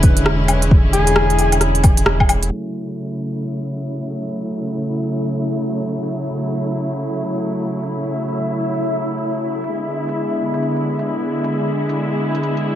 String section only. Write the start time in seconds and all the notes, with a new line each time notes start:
Already playing: D3 G#3 C#4 E4
2.51 C#3 F#3 A3 E4
9.73 D3 G#3 B3